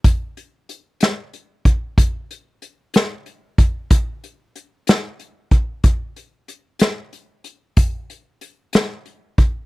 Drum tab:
HH |xxxxxx|xxxxxx|xxxxxx|xxxxxx|
SD |---o--|---o--|---o--|---o--|
BD |o----o|o----o|o----o|o-----|

HH |xxxxxx|
SD |---o--|
BD |o----o|